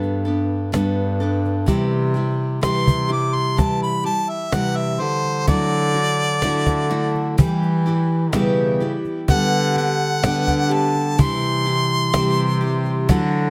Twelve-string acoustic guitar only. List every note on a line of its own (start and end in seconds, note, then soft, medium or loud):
5.48 7.38 F#3 medium
6.43 6.89 A3 medium
6.43 7.48 E4 medium
6.43 7.48 A4 medium
6.91 7.47 A3 medium
7.38 9.27 G3 medium
8.33 9.38 B3 medium
8.33 9.38 E4 medium
8.33 9.38 G4 medium
9.28 11.18 G3 medium
10.23 10.70 B3 medium
10.23 11.29 D4 medium
10.23 11.29 G4 medium
10.71 11.28 B3 medium
11.18 13.08 E3 medium
12.14 13.19 C4 medium
12.14 13.19 E4 medium
12.14 13.19 G4 medium
13.09 13.50 F#3 medium